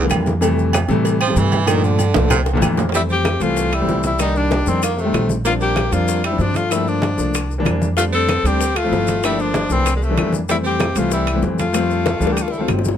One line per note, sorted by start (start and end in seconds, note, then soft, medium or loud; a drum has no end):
0.02 0.30 D3 medium
0.02 0.30 E3 medium
0.02 0.31 G3 medium
0.02 0.31 A#3 medium
0.09 0.83 F2 loud
0.09 cowbell medium
0.09 high conga medium
0.09 low timbale medium
0.09 low agogo loud
0.09 claves medium
0.09 maracas medium
0.26 cowbell medium
0.26 high conga medium
0.26 maracas soft
0.41 0.75 C3 medium
0.41 0.75 E3 medium
0.41 0.75 G3 medium
0.41 0.75 A3 loud
0.41 cowbell loud
0.41 high conga soft
0.41 low agogo medium
0.41 maracas medium
0.58 high conga soft
0.58 maracas soft
0.73 cowbell medium
0.73 high conga loud
0.73 low agogo loud
0.73 claves medium
0.73 maracas medium
0.88 1.33 A2 medium
0.88 1.16 C3 loud
0.88 1.17 E3 medium
0.88 1.17 G3 loud
0.88 1.17 A3 loud
0.88 cowbell medium
0.88 maracas soft
1.05 cowbell loud
1.05 high conga soft
1.05 low agogo medium
1.05 maracas medium
1.21 1.40 F3 medium
1.21 high conga soft
1.21 low agogo loud
1.21 claves medium
1.21 maracas soft
1.28 1.56 C3 medium
1.28 1.56 E3 medium
1.28 1.56 G3 medium
1.28 1.56 A3 medium
1.36 2.09 G2 loud
1.36 1.69 E3 loud
1.36 cowbell medium
1.36 high conga medium
1.36 maracas medium
1.52 high conga medium
1.52 low agogo medium
1.52 maracas soft
1.66 2.00 A#2 medium
1.66 2.00 D3 medium
1.66 1.85 D#3 medium
1.66 2.01 F3 medium
1.66 2.01 A3 loud
1.66 cowbell loud
1.66 high conga soft
1.66 low agogo loud
1.66 claves medium
1.66 maracas medium
1.84 2.30 D3 medium
1.84 high conga soft
1.84 maracas soft
1.99 cowbell medium
1.99 high conga medium
1.99 low agogo medium
1.99 maracas medium
2.14 2.59 C2 medium
2.14 2.31 A#2 medium
2.14 2.31 D3 medium
2.14 2.31 F3 medium
2.14 2.32 A3 medium
2.14 high bongo medium
2.14 high conga medium
2.14 high timbale loud
2.14 maracas soft
2.30 2.40 C3 medium
2.30 cowbell loud
2.30 low bongo loud
2.30 high conga soft
2.30 low conga medium
2.30 low agogo loud
2.30 claves medium
2.30 maracas medium
2.36 low timbale medium
2.46 cowbell medium
2.46 high bongo medium
2.46 high conga soft
2.46 high timbale medium
2.46 maracas soft
2.53 2.81 A#2 loud
2.53 2.82 D3 medium
2.53 2.82 E3 loud
2.53 2.82 A3 loud
2.53 low timbale medium
2.62 3.35 F2 loud
2.62 cowbell medium
2.62 low bongo loud
2.62 high conga medium
2.62 low agogo loud
2.62 claves medium
2.62 maracas medium
2.77 cowbell medium
2.77 low bongo medium
2.77 high conga medium
2.77 low timbale medium
2.77 maracas soft
2.89 3.26 E3 medium
2.89 high bongo medium
2.89 low timbale medium
2.93 3.27 G3 medium
2.93 3.01 G3 medium
2.93 3.27 A3 medium
2.93 3.27 C4 medium
2.93 3.03 E4 medium
2.93 high conga soft
2.93 high timbale medium
2.93 maracas medium
3.09 3.45 C4 medium
3.09 3.44 G4 loud
3.09 high bongo soft
3.09 high conga soft
3.09 maracas soft
3.25 high bongo medium
3.25 high conga medium
3.25 high timbale medium
3.25 claves medium
3.25 maracas soft
3.40 3.84 C2 medium
3.40 3.68 E3 medium
3.40 3.68 G3 medium
3.40 3.69 A3 medium
3.40 3.76 A3 medium
3.40 3.69 C4 medium
3.40 3.75 F4 medium
3.40 high bongo soft
3.40 high conga soft
3.40 high timbale medium
3.40 maracas medium
3.57 high bongo medium
3.57 high conga soft
3.57 maracas medium
3.72 4.04 G3 medium
3.72 4.05 E4 medium
3.72 high bongo soft
3.72 high conga soft
3.72 high timbale medium
3.72 claves medium
3.72 maracas soft
3.80 4.08 E3 medium
3.80 4.08 G3 medium
3.80 4.08 A3 medium
3.80 4.09 C4 medium
3.87 4.61 C2 medium
3.87 high bongo soft
3.87 low bongo medium
3.87 high conga medium
3.87 low timbale medium
3.87 maracas soft
4.03 4.19 G3 medium
4.03 4.20 E4 medium
4.03 high conga medium
4.03 high timbale medium
4.03 maracas medium
4.19 4.52 D#3 medium
4.19 4.53 G3 medium
4.19 4.35 G3 medium
4.19 4.53 A#3 medium
4.19 4.53 D4 medium
4.19 4.39 D#4 medium
4.19 high bongo medium
4.19 high conga soft
4.19 high timbale medium
4.19 claves medium
4.19 maracas medium
4.35 4.69 G3 medium
4.35 4.70 D4 medium
4.35 high bongo soft
4.35 high conga soft
4.35 maracas soft
4.51 high bongo medium
4.51 high conga medium
4.51 high timbale medium
4.51 maracas soft
4.66 5.10 F2 medium
4.66 4.82 D#3 medium
4.66 4.81 D#3 medium
4.66 4.82 G3 medium
4.66 4.83 A#3 medium
4.66 4.83 C4 medium
4.66 4.83 D4 medium
4.66 high bongo soft
4.66 maracas medium
4.82 4.98 D#3 medium
4.82 5.02 A#3 medium
4.82 high bongo medium
4.82 high conga soft
4.82 high timbale medium
4.82 claves medium
4.82 maracas medium
4.96 5.29 C3 medium
4.96 high bongo soft
4.96 high conga soft
4.96 maracas soft
5.01 5.33 D#3 medium
5.01 5.31 A3 medium
5.05 5.33 G3 medium
5.05 5.33 A3 medium
5.05 5.34 C4 medium
5.13 5.87 A#1 medium
5.13 high bongo soft
5.13 low bongo medium
5.13 high conga medium
5.13 high timbale medium
5.13 low timbale medium
5.13 claves medium
5.13 maracas soft
5.29 high conga medium
5.29 maracas medium
5.44 5.78 F3 medium
5.44 5.78 G3 medium
5.44 5.52 A#3 medium
5.44 5.79 C4 medium
5.44 5.79 D4 medium
5.44 5.54 F4 medium
5.44 high bongo medium
5.44 high conga soft
5.44 high timbale medium
5.44 maracas medium
5.60 5.92 A#3 medium
5.60 5.95 G4 medium
5.60 high bongo soft
5.60 high conga soft
5.60 maracas soft
5.76 high bongo medium
5.76 high conga medium
5.76 high timbale medium
5.76 claves medium
5.76 maracas soft
5.90 6.36 F2 medium
5.90 6.19 F3 medium
5.90 6.20 G3 medium
5.90 6.24 A#3 medium
5.90 6.20 C4 medium
5.90 6.20 D4 medium
5.90 6.24 F4 medium
5.90 high bongo soft
5.90 high conga soft
5.90 high timbale medium
5.90 maracas medium
6.08 high bongo medium
6.08 high conga soft
6.08 maracas medium
6.24 6.42 G3 medium
6.24 6.43 E4 medium
6.24 high bongo soft
6.24 high conga soft
6.24 high timbale medium
6.24 claves medium
6.24 maracas soft
6.30 6.59 F3 medium
6.30 6.59 G3 medium
6.30 6.60 C4 medium
6.30 6.60 D4 medium
6.38 7.12 G2 medium
6.38 6.57 F3 medium
6.38 6.58 D4 medium
6.38 high bongo soft
6.38 low bongo medium
6.38 high conga medium
6.38 maracas soft
6.54 6.73 A3 medium
6.54 6.73 F4 medium
6.54 high conga medium
6.54 high timbale medium
6.54 maracas medium
6.70 7.04 F3 medium
6.70 6.89 G3 medium
6.70 7.04 A3 medium
6.70 7.04 A#3 medium
6.70 7.05 D4 medium
6.70 6.90 E4 medium
6.70 high bongo medium
6.70 high conga soft
6.70 high timbale medium
6.70 claves medium
6.70 maracas medium
6.86 7.35 F3 medium
6.86 7.55 D4 medium
6.86 high bongo soft
6.86 high conga soft
6.86 maracas soft
7.02 high bongo medium
7.02 high conga medium
7.02 high timbale medium
7.02 maracas soft
7.17 7.62 C2 medium
7.17 7.33 F3 medium
7.17 7.34 A3 medium
7.17 7.34 A#3 medium
7.17 7.34 D4 medium
7.17 high bongo soft
7.17 maracas medium
7.34 high bongo medium
7.34 high conga soft
7.34 high timbale medium
7.34 claves medium
7.34 maracas medium
7.50 high bongo soft
7.50 high conga soft
7.50 maracas soft
7.58 7.86 E3 medium
7.58 7.86 G3 medium
7.58 7.86 A#3 medium
7.58 7.86 D4 loud
7.65 8.38 F2 medium
7.65 high bongo soft
7.65 low bongo medium
7.65 high conga medium
7.65 high timbale medium
7.65 low timbale medium
7.65 claves medium
7.65 maracas soft
7.82 high conga medium
7.82 maracas medium
7.96 8.30 G3 medium
7.96 8.30 A3 medium
7.96 8.05 A3 medium
7.96 8.31 C4 medium
7.96 8.31 D4 medium
7.96 8.04 F4 medium
7.96 high bongo medium
7.96 high conga soft
7.96 high timbale medium
7.96 maracas medium
8.13 8.45 C4 medium
8.13 8.48 A4 medium
8.13 high bongo soft
8.13 high conga soft
8.13 maracas soft
8.29 high bongo medium
8.29 high conga medium
8.29 high timbale medium
8.29 claves medium
8.29 maracas soft
8.43 8.88 D2 medium
8.43 8.60 G3 medium
8.43 8.60 A3 medium
8.43 8.76 C4 medium
8.43 8.60 C4 medium
8.43 8.61 D4 medium
8.43 8.79 G4 loud
8.43 high bongo soft
8.43 high conga soft
8.43 high timbale medium
8.43 maracas medium
8.61 high bongo medium
8.61 high conga soft
8.61 maracas medium
8.75 9.23 A3 medium
8.75 9.24 F4 medium
8.75 high bongo soft
8.75 high conga soft
8.75 high timbale medium
8.75 claves medium
8.75 maracas soft
8.84 9.11 F3 medium
8.84 9.11 A3 medium
8.84 9.12 C4 medium
8.84 9.12 E4 medium
8.91 9.64 G1 medium
8.91 high bongo soft
8.91 low bongo medium
8.91 high conga medium
8.91 low timbale medium
8.91 maracas soft
9.07 high conga medium
9.07 high timbale medium
9.07 maracas medium
9.23 9.56 F3 medium
9.23 9.41 G3 medium
9.23 9.57 A3 medium
9.23 9.57 A#3 medium
9.23 9.57 D4 medium
9.23 9.42 E4 medium
9.23 high bongo medium
9.23 high timbale medium
9.23 claves medium
9.23 maracas medium
9.39 9.73 F3 medium
9.39 9.74 D4 medium
9.39 high bongo soft
9.39 high conga soft
9.39 maracas soft
9.54 high bongo medium
9.54 high conga medium
9.54 high timbale medium
9.54 maracas soft
9.69 10.14 C2 medium
9.69 9.94 E3 medium
9.69 9.85 F3 medium
9.69 9.86 A3 medium
9.69 9.86 A#3 medium
9.69 9.96 C4 medium
9.69 9.86 D4 medium
9.69 high bongo soft
9.69 maracas medium
9.86 high bongo medium
9.86 high conga soft
9.86 high timbale medium
9.86 claves medium
9.86 maracas medium
9.95 10.04 A#2 soft
9.95 10.05 G#3 medium
10.02 10.34 C3 medium
10.02 10.34 A3 medium
10.02 high bongo soft
10.02 high conga soft
10.02 maracas soft
10.09 10.37 E3 medium
10.09 10.37 G3 medium
10.09 10.38 A#3 medium
10.09 10.38 D4 medium
10.17 10.90 F2 medium
10.17 high bongo soft
10.17 low bongo medium
10.17 high conga medium
10.17 high timbale medium
10.17 claves medium
10.17 maracas soft
10.33 high conga medium
10.33 maracas medium
10.48 10.82 E3 medium
10.48 10.56 G3 medium
10.48 10.82 G3 medium
10.48 10.82 A3 medium
10.48 10.83 C4 medium
10.48 10.58 E4 medium
10.48 high bongo medium
10.48 high conga soft
10.48 high timbale medium
10.48 maracas medium
10.64 10.99 C4 medium
10.64 11.00 G4 medium
10.64 high bongo soft
10.64 high conga soft
10.64 maracas soft
10.80 high bongo medium
10.80 high conga medium
10.80 high timbale medium
10.80 claves medium
10.80 maracas soft
10.96 11.40 C2 medium
10.96 11.24 E3 medium
10.96 11.24 G3 medium
10.96 11.24 A3 medium
10.96 11.12 A3 medium
10.96 11.24 C4 medium
10.96 11.12 F4 medium
10.96 high bongo soft
10.96 high timbale medium
10.96 maracas medium
11.11 11.42 G3 medium
11.11 11.42 E4 medium
11.11 high bongo medium
11.11 high conga soft
11.11 maracas medium
11.27 high bongo soft
11.27 high conga soft
11.27 high timbale medium
11.27 claves medium
11.27 maracas soft
11.33 11.62 E3 medium
11.33 11.62 G3 medium
11.33 11.63 A3 medium
11.33 11.63 C4 medium
11.42 12.16 F2 medium
11.42 high bongo soft
11.42 low bongo medium
11.42 high conga medium
11.42 maracas soft
11.59 12.34 A3 medium
11.59 12.34 F4 medium
11.59 high conga medium
11.59 high timbale medium
11.59 maracas medium
11.73 12.07 F3 medium
11.73 12.07 G3 medium
11.73 12.07 A3 medium
11.73 12.08 C4 medium
11.73 high bongo medium
11.73 high conga soft
11.73 high timbale medium
11.73 claves medium
11.73 maracas medium
11.91 high bongo soft
11.91 high conga soft
11.91 maracas soft
12.06 high bongo medium
12.06 high conga medium
12.06 high timbale medium
12.06 maracas soft
12.20 12.65 D2 medium
12.20 12.36 E3 medium
12.20 12.37 G3 medium
12.20 12.37 A3 medium
12.20 12.38 D4 medium
12.20 maracas medium
12.27 high bongo loud
12.32 12.43 A#3 medium
12.32 12.44 G4 medium
12.37 high conga soft
12.37 high timbale medium
12.37 claves medium
12.37 maracas medium
12.41 12.51 A3 medium
12.41 12.53 F4 medium
12.48 12.59 G3 medium
12.48 12.63 E4 medium
12.48 high bongo medium
12.53 high conga soft
12.53 maracas soft
12.58 12.88 D#3 medium
12.58 12.88 F#3 medium
12.58 12.68 A3 medium
12.58 12.88 A3 medium
12.58 12.88 C4 medium
12.62 12.70 F4 medium
12.68 12.96 G1 medium
12.68 low bongo medium
12.68 high conga medium
12.68 high timbale medium
12.68 low timbale medium
12.68 claves medium
12.68 maracas soft
12.79 low bongo medium
12.85 low bongo loud
12.85 high conga medium
12.85 maracas medium